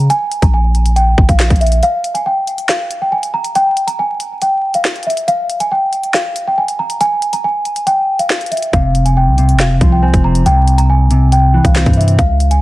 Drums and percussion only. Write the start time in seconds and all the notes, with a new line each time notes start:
0.10 closed hi-hat
0.32 closed hi-hat
0.42 kick, closed hi-hat
0.75 closed hi-hat
0.86 closed hi-hat
0.96 closed hi-hat
1.18 kick
1.29 kick, closed hi-hat
1.40 snare, clap
1.50 kick, closed hi-hat
1.56 closed hi-hat
1.61 closed hi-hat, open hi-hat
1.66 closed hi-hat
1.72 closed hi-hat
1.83 closed hi-hat
2.04 closed hi-hat
2.15 closed hi-hat
2.47 closed hi-hat
2.58 closed hi-hat
2.69 snare, clap
2.91 closed hi-hat
3.23 closed hi-hat
3.44 closed hi-hat
3.55 closed hi-hat
3.77 closed hi-hat
3.88 closed hi-hat
4.20 closed hi-hat
4.42 closed hi-hat
4.74 closed hi-hat
4.85 snare, clap
4.96 closed hi-hat
5.03 closed hi-hat
5.10 closed hi-hat
5.17 closed hi-hat
5.28 closed hi-hat
5.50 closed hi-hat
5.60 closed hi-hat
5.93 closed hi-hat
6.04 closed hi-hat
6.14 snare, clap
6.36 closed hi-hat
6.68 closed hi-hat
6.90 closed hi-hat
7.01 closed hi-hat
7.22 closed hi-hat
7.33 closed hi-hat
7.65 closed hi-hat
7.76 closed hi-hat
7.87 closed hi-hat
8.19 closed hi-hat
8.30 snare, clap
8.41 closed hi-hat
8.46 closed hi-hat
8.52 closed hi-hat, open hi-hat
8.57 closed hi-hat
8.62 closed hi-hat
8.73 kick, closed hi-hat
8.95 closed hi-hat
9.06 closed hi-hat
9.38 closed hi-hat
9.49 closed hi-hat
9.60 snare, clap
9.81 kick, closed hi-hat
10.14 kick, closed hi-hat
10.35 closed hi-hat
10.46 closed hi-hat
10.68 closed hi-hat
10.78 closed hi-hat
11.11 closed hi-hat
11.32 closed hi-hat
11.65 kick, closed hi-hat
11.75 snare, clap
11.86 kick, closed hi-hat
11.93 closed hi-hat
12.01 closed hi-hat
12.08 closed hi-hat
12.19 kick, closed hi-hat
12.40 closed hi-hat
12.51 closed hi-hat